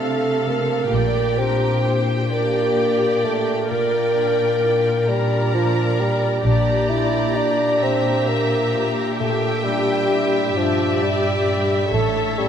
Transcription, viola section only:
0.00 0.88 A4 soft
0.92 2.29 G4 soft
2.31 3.67 G4 soft
3.69 5.04 A#4 soft
5.06 6.42 A#4 soft
6.45 7.79 G4 soft
7.82 11.88 G4 soft
11.93 12.48 A4 soft

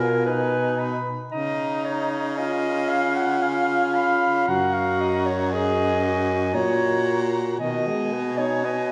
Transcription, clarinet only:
0.00 0.25 A#4 medium
0.26 1.03 B4 medium
1.32 1.87 D#5 loud
1.85 2.39 C#5 medium
2.38 2.91 D#5 medium
2.89 3.15 F5 loud
3.15 3.41 F#5 medium
3.42 4.50 F5 loud
4.48 4.75 F#5 loud
4.74 5.02 F5 medium
5.01 5.28 D#5 medium
5.26 5.54 C#5 medium
5.53 6.57 D#5 loud
6.55 7.32 C#5 medium
7.60 8.40 D#5 loud
8.38 8.66 C#5 medium
8.65 8.92 D#5 medium

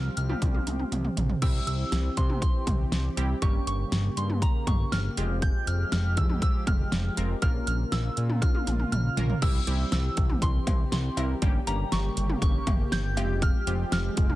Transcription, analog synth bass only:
0.17 0.35 C2 loud
0.42 0.59 C2 loud
0.67 0.85 C2 medium
0.92 1.10 C2 loud
1.17 1.35 A#1 medium
1.42 1.60 C2 loud
1.67 1.84 C2 medium
1.92 2.10 C2 loud
2.17 2.44 C3 loud
2.67 2.85 C2 loud
2.92 3.09 C2 loud
3.17 3.35 C2 loud
3.42 3.60 G1 loud
3.67 3.85 G1 loud
3.92 4.10 G1 loud
4.17 4.43 G2 loud
4.67 4.85 G1 medium
4.92 5.10 G1 loud
5.17 5.52 F1 loud
5.67 5.85 F1 loud
5.92 6.19 F1 loud
6.17 6.44 F2 loud
6.67 6.85 F1 loud
6.92 7.10 F1 loud
7.17 7.35 F1 medium
7.42 7.60 A#1 loud
7.67 7.85 A#1 loud
7.92 8.10 A#1 loud
8.17 8.43 A#2 loud
8.67 8.85 A#1 medium
8.92 9.10 A#1 loud
9.17 9.35 A#1 loud
9.42 9.60 C2 loud
9.67 9.85 C2 loud
9.92 10.10 C2 loud
10.17 10.35 C2 loud
10.42 10.59 C2 loud
10.67 10.85 C2 loud
10.92 11.10 C2 loud
11.17 11.35 C2 loud
11.42 11.60 G1 loud
11.67 11.85 G1 loud
11.92 12.10 G1 loud
12.17 12.35 G1 loud
12.42 12.59 G1 loud
12.67 12.85 G1 loud
12.92 13.19 G1 loud
13.17 13.52 F1 loud
13.67 13.85 F1 loud
13.92 14.10 F1 loud
14.17 14.35 F1 loud

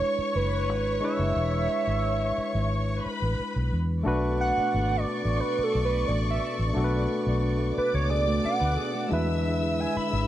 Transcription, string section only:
0.00 3.01 C#5 medium
0.00 3.01 C#6 medium
3.04 3.70 B4 medium
3.04 3.70 B5 medium
4.06 7.73 D5 medium
4.06 7.72 C#6 medium
7.76 9.08 D5 medium
7.76 9.08 D6 medium
9.10 10.27 E5 medium
9.10 10.27 E6 medium

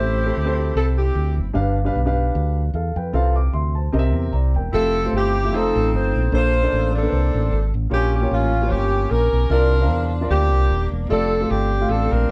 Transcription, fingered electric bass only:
0.00 0.30 A1 medium
0.37 0.70 D2 medium
0.75 1.09 C2 medium
1.15 1.39 D2 medium
1.37 1.53 F#1 medium
1.55 1.89 G1 loud
1.96 2.29 B1 medium
2.35 2.69 D2 medium
2.74 2.93 E2 medium
2.96 3.12 F2 medium
3.13 3.48 C2 medium
3.53 3.88 D2 medium
3.94 4.14 C2 medium
4.14 4.30 E2 medium
4.33 4.56 C2 medium
4.54 4.70 E1 medium
4.73 5.07 F1 loud
5.13 5.53 G1 medium
5.53 5.72 F1 loud
5.75 5.91 A1 medium
5.94 6.12 G1 medium
6.16 6.31 A#1 medium
6.32 6.66 A#1 loud
6.73 7.06 A1 medium
7.12 7.31 C2 medium
7.34 7.49 A1 medium
7.52 7.71 G#1 loud
7.74 7.89 A1 medium
7.91 8.25 A#1 loud
8.31 8.72 A1 medium
8.71 9.05 G1 loud
9.11 9.30 A#1 medium
9.33 9.48 B1 medium
9.50 9.90 C2 loud
9.90 10.24 E2 loud
10.30 10.52 D2 medium
10.52 10.67 C2 medium
10.69 10.88 D#1 medium
10.92 11.07 E1 medium
11.10 11.44 F1 loud
11.51 11.84 G1 medium
11.89 12.08 A1 medium
12.12 12.27 A#1 medium

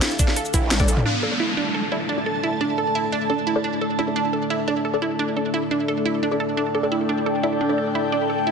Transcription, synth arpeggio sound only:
0.02 0.11 E4 loud
0.19 0.33 D4 loud
0.37 0.46 A4 medium
0.54 0.59 E4 loud
0.71 0.80 D4 medium
0.88 0.98 A4 medium
1.05 1.19 D4 loud
1.23 1.32 A4 medium
1.40 1.49 E4 loud
1.57 1.71 D4 loud
1.74 1.84 A4 medium
1.92 2.01 E4 loud
2.09 2.23 D4 loud
2.26 2.35 A4 medium
2.43 2.53 E4 loud
2.61 2.75 D4 loud
2.78 2.87 A4 medium
2.95 3.04 E4 loud
3.12 3.26 D4 loud
3.30 3.39 A4 medium
3.47 3.56 E4 loud
3.64 3.78 D4 medium
3.81 3.91 A4 medium
3.99 4.08 E4 loud
4.16 4.30 D4 loud
4.33 4.42 A4 medium
4.50 4.60 E4 loud
4.68 4.82 D4 loud
4.85 4.94 A4 medium
5.02 5.11 E4 loud
5.19 5.33 D4 loud
5.37 5.46 A4 medium
5.54 5.63 E4 loud
5.71 5.85 D4 loud
5.88 5.98 A4 medium
6.05 6.15 E4 loud
6.23 6.37 D4 loud
6.40 6.49 A4 medium
6.57 6.71 D4 loud
6.75 6.84 A4 medium
6.92 7.01 E4 loud
7.09 7.23 D4 loud
7.26 7.36 A4 medium
7.43 7.53 E4 loud
7.61 7.75 D4 loud
7.78 7.87 A4 medium
7.95 8.04 E4 loud
8.12 8.26 D4 loud
8.30 8.39 A4 medium
8.47 8.51 E4 loud

